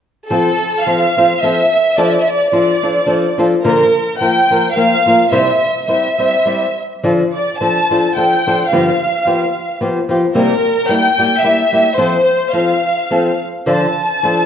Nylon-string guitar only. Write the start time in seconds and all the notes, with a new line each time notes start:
0.30 F3 C4 F4 A4
0.86 F3 C4 F4 A4
1.17 F3 C4 F4 A4
1.42 F3 C4 F4 A4
1.98 F3 D4 F4 A4
2.52 F3 D4 F4 A4
2.83 F3 D4 F4 A4
3.06 F3 D4 F4 A4
3.38 F3 D4 F4 A4
3.64 A#2 D3 F3 A#3 F4 A#4
4.20 F3 A#3 F4 A#4
4.50 F3 A#3 F4 A#4
4.75 F3 A#3 F4 A#4
5.06 F3 A#3 F4 A#4
5.31 C3 G3 C4 E4 C5
5.88 G3 C4 E4 C5
6.18 G3 C4 E4 C5
6.45 G3 C4 E4 C5
7.04 D3 F3 D4 F4 A4
7.61 F3 D4 F4 A4
7.91 F3 D4 F4 A4
8.17 F3 D4 F4 A4
8.47 F3 D4 F4 A4
8.72 G2 D3 F3 B3 F4 G4
9.26 F3 B3 F4 G4
9.81 F3 B3 F4 G4
10.09 F3 B3 F4 G4
10.35 C3 G3 A#3 E4 G4
10.89 G3 A#3 E4 G4
11.18 G3 A#3 E4 G4
11.42 G3 A#3 E4 G4
11.72 G3 A#3 E4 G4
11.98 F3 C4 F4 A4
12.53 F3 C4 F4 A4
13.10 F3 C4 F4 A4
13.66 D3 F3 D4 F4 A4
14.23 F3 D4 F4 A4